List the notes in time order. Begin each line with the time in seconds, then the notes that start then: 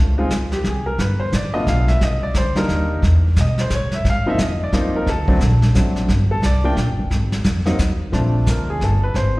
Already playing: C#2
0.18 G#3 C4 D#4 F4
0.30 D#2, kick, snare, hi-hat pedal
0.52 G4, snare
0.64 C2 G#4, kick, snare
0.86 A#4
0.98 G1 B4, brush sweep, kick, snare
1.20 C5
1.32 A1 D5, kick, snare, hi-hat pedal
1.54 A3 B3 D4 F4 D#5
1.67 B1 F5, kick, snare
1.88 E5, snare
2.00 C2 D#5, brush sweep, kick, snare
2.23 D5
2.34 D2 C5, kick, snare, hi-hat pedal
2.56 G3 A#3 D4 D#4 A#4, snare
2.68 D#2, kick, snare
3.02 E2, brush sweep, kick, snare
3.36 B2, kick, snare, hi-hat pedal
3.41 D#5
3.58 C5, snare
3.70 A2, kick, snare, hi-hat pedal
3.74 C#5
3.92 E5, snare
4.04 G#2, brush sweep, kick, snare
4.10 F5
4.26 F3 A#3 C4 D#4 E5
4.38 F2, kick, snare, hi-hat pedal
4.42 D#5
4.64 D5
4.72 D#2 F3 A#3 C4 D#4, kick, snare
4.77 C5
4.96 A#4
5.07 D2 A4, brush sweep, kick, snare
5.28 F#3 A3 C4 D4, kick
5.40 A#1, kick, snare, hi-hat pedal
5.62 snare
5.74 A1 F#3 A3 C4 D4, kick, snare, hi-hat pedal
5.96 snare
6.08 G1, brush sweep, kick, snare
6.31 A4
6.42 C2 D5, kick, snare, hi-hat pedal
6.64 F3 A3 A#3 D4 G5
6.76 A#1, kick, snare
6.87 G1
6.99 F1
7.10 G#1, brush sweep, kick, snare
7.32 snare
7.44 F2, kick, snare, hi-hat pedal
7.65 F#3 A#3 C4 D#4, snare
7.79 D#2, kick, snare, hi-hat pedal
8.12 A#1 F3 A3 C4 D4, brush sweep, kick, snare
8.46 D2 A#4, kick, snare, hi-hat pedal
8.70 G#4
8.80 G1 A4, kick, snare
9.03 B4
9.14 G#1 C5, brush sweep, kick, snare